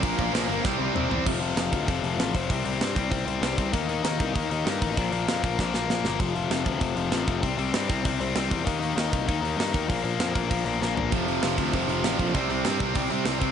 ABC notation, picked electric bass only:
X:1
M:4/4
L:1/8
Q:1/4=195
K:Cmix
V:1 name="Picked electric bass" clef=bass
B,,, B,,, B,,, G,,, C,, C,, C,, E,, | F,,,2 F,,, D,, F,,, F,,, A,,, F,,, | C,, C,, G,, C,, C,, C,, C,, C,, | _E,,2 E,, C,, E,, E,, G,, A,,, |
B,,, B,,, F,, B,,, B,,, B,,, B,,, G,,, | F,,,2 F,,, D,, F,,, F,,, A,,, F,,, | C,, C,, G,, C,, C,, C,, C,, E,, | _E,,2 E,, C,, E,, E,, G,, E,, |
B,,, B,,, F,, B,,, B,,, B,,, B,,, B,,, | F,,,2 F,,, D,, F,,, F,,, A,,, B,,, | C,, C,, G,, C,, C,, C,, C,, C,, |]